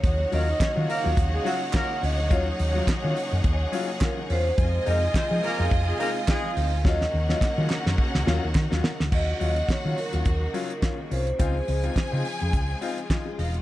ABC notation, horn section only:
X:1
M:4/4
L:1/16
Q:"Swing 16ths" 1/4=106
K:Ebdor
V:1 name="Horn section"
z2 [B,B] [Ee] [Dd] z [B,B]2 z [A,A] [G,G] z [B,B]2 z2 | z16 | z2 [B,B] [Ee] [Cc] z [B,B]2 z [A,A] [B,B] z [A,A]2 z2 | z16 |
z16 | z16 |]